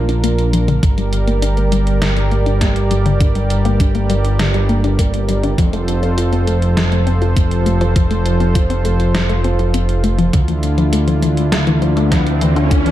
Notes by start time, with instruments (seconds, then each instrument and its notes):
Already playing: analog synth bass A#1, analog synth pad D4 F4 A#4
0.09 synth arpeggio sound D4, closed hi-hat
0.24 synth arpeggio sound A#3, closed hi-hat
0.39 closed hi-hat
0.53 synth arpeggio sound F3, closed hi-hat
0.68 synth arpeggio sound D3, closed hi-hat
0.83 analog synth bass G1, synth arpeggio sound D3, analog synth pad G3 G4 D5, kick, closed hi-hat
0.98 synth arpeggio sound G3, closed hi-hat
1.13 closed hi-hat
1.27 synth arpeggio sound A#3, closed hi-hat
1.42 synth arpeggio sound D4, closed hi-hat
1.57 synth arpeggio sound A#3, closed hi-hat
1.72 synth arpeggio sound G3, closed hi-hat
1.87 closed hi-hat
2.02 synth arpeggio sound D3, snare, closed hi-hat
2.17 synth arpeggio sound G3, closed hi-hat
2.31 synth arpeggio sound A#3, closed hi-hat
2.46 synth arpeggio sound D4, closed hi-hat
2.61 synth arpeggio sound A#3, kick, snare, closed hi-hat
2.76 closed hi-hat
2.91 synth arpeggio sound G3, closed hi-hat
3.06 synth arpeggio sound D3, closed hi-hat
3.20 synth arpeggio sound D3, kick, closed hi-hat
3.35 synth arpeggio sound G3, closed hi-hat
3.50 closed hi-hat
3.65 synth arpeggio sound A#3, closed hi-hat
3.80 synth arpeggio sound D4, kick, closed hi-hat
3.95 synth arpeggio sound A#3, closed hi-hat
4.10 synth arpeggio sound G3, closed hi-hat
4.25 closed hi-hat
4.39 synth arpeggio sound D3, snare, closed hi-hat
4.54 synth arpeggio sound G3, closed hi-hat
4.69 synth arpeggio sound A#3, closed hi-hat
4.84 synth arpeggio sound D4, closed hi-hat
4.99 synth arpeggio sound A#3, kick, closed hi-hat
5.14 closed hi-hat
5.29 synth arpeggio sound G3, closed hi-hat
5.43 synth arpeggio sound D3, closed hi-hat
5.58 analog synth bass F1, analog synth pad F3 F4 A4 C5, synth arpeggio sound F3, kick, closed hi-hat
5.73 synth arpeggio sound A3, closed hi-hat
5.88 closed hi-hat
6.03 synth arpeggio sound C4, closed hi-hat
6.18 synth arpeggio sound F4, closed hi-hat
6.33 synth arpeggio sound C4, closed hi-hat
6.47 synth arpeggio sound A3, closed hi-hat
6.62 closed hi-hat
6.77 synth arpeggio sound F3, snare, closed hi-hat
6.92 synth arpeggio sound A3, closed hi-hat
7.07 synth arpeggio sound C4, closed hi-hat
7.22 synth arpeggio sound F4, closed hi-hat
7.36 synth arpeggio sound C4, kick, closed hi-hat
7.51 closed hi-hat
7.66 synth arpeggio sound A3, closed hi-hat
7.81 synth arpeggio sound F3, closed hi-hat
7.96 synth arpeggio sound F3, kick, closed hi-hat
8.11 synth arpeggio sound A3, closed hi-hat
8.26 closed hi-hat
8.40 synth arpeggio sound C4, closed hi-hat
8.55 synth arpeggio sound F4, kick, closed hi-hat
8.70 synth arpeggio sound C4, closed hi-hat
8.85 synth arpeggio sound A3, closed hi-hat
9.00 closed hi-hat
9.15 synth arpeggio sound F3, snare, closed hi-hat
9.29 synth arpeggio sound A3, closed hi-hat
9.44 synth arpeggio sound C4, closed hi-hat
9.59 synth arpeggio sound F4, closed hi-hat
9.74 synth arpeggio sound C4, closed hi-hat
9.89 closed hi-hat
10.04 synth arpeggio sound A3, closed hi-hat
10.18 synth arpeggio sound F3, closed hi-hat
10.33 analog synth bass D2, synth arpeggio sound D3, analog synth pad D3 D4 E4, kick, closed hi-hat, riser
10.48 synth arpeggio sound E3, closed hi-hat
10.63 closed hi-hat
10.78 synth arpeggio sound F3, closed hi-hat
10.93 synth arpeggio sound A3, closed hi-hat
11.08 synth arpeggio sound F3, closed hi-hat
11.22 synth arpeggio sound E3, closed hi-hat
11.37 closed hi-hat
11.52 synth arpeggio sound D3, snare, closed hi-hat
11.67 synth arpeggio sound E3, closed hi-hat
11.82 synth arpeggio sound F3, closed hi-hat
11.97 synth arpeggio sound A3, closed hi-hat
12.12 synth arpeggio sound F3, kick, snare, closed hi-hat
12.27 closed hi-hat
12.41 synth arpeggio sound E3, closed hi-hat
12.56 synth arpeggio sound D3, closed hi-hat
12.71 synth arpeggio sound D3, kick, closed hi-hat
12.86 synth arpeggio sound E3, closed hi-hat